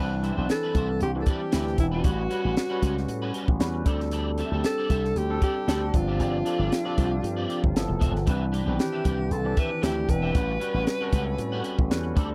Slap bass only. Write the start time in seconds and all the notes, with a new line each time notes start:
Already playing: C2
0.38 B1
0.75 C2
1.02 C2
1.54 D2
1.78 E1
2.05 A1
2.45 A1
2.82 C#2
3.08 A2
3.48 A1
3.60 E2
3.86 D2
4.52 D2
4.90 C2
5.15 D2
5.68 D2
5.94 G1
6.20 G1
6.59 G1
6.98 C2
7.24 G2
7.64 G1
7.74 G1
7.89 F1
8.01 E1
8.15 G1
8.27 C2
8.67 B1
9.05 C2
9.31 C2
9.83 D2
10.09 E1
10.34 A1
10.74 A1
11.13 C#2
11.39 A2
11.79 A1
11.91 E2
12.16 D2